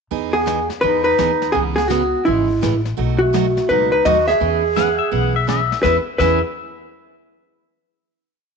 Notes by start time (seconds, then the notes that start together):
0.11 E2 E3 B3 D#4 G#4, brush sweep
0.33 B3 G#4
0.46 E3 B3 D#4 G#4, snare, hi-hat pedal
0.70 snare
0.81 E2 E3 B3 D#4 G#4 B4, brush sweep
1.03 D#4 B4
1.18 D#2 E3 B3 D#4 G#4, snare, hi-hat pedal
1.42 snare
1.52 C#2 C#3 E3 B3 C#4 G#4, brush sweep
1.75 B3 G#4, snare
1.88 C#3 E3 B3 C#4 F#4 G#4, snare, hi-hat pedal
2.24 G#1 C#3 E3 G#3 B3 C#4 E4 G#4, brush sweep
2.61 A1 C#3 E3 B3 C#4 G#4, snare, hi-hat pedal
2.85 snare
2.97 B1 B2 F#3 A3 D#4 F#4, brush sweep
3.19 A3 F#4
3.33 B2 F#3 A3 D#4 F#4, snare, hi-hat pedal
3.57 snare
3.69 C#2 B2 F#3 A3 D#4 F#4 B4, brush sweep
3.92 D#4 B4
4.05 D#2 B2 F#3 A3 D#4 F#4 D#5, snare, hi-hat pedal
4.28 G#4 E5, snare
4.40 E2 E3 B3 C#4 G#4, brush sweep
4.76 E3 B3 C#4 G#4 F#5, snare, hi-hat pedal
4.99 E5
5.11 B1 E3 B3 C#4 G#4 F#5, brush sweep
5.36 E5
5.47 E3 B3 C#4 G#4 E5, snare, hi-hat pedal
5.72 snare
5.83 E2 E3 B3 C#4 E4 G#4 B4 E5, kick, snare
6.18 E2 E3 B3 C#4 E4 G#4 B4 E5, kick, snare, crash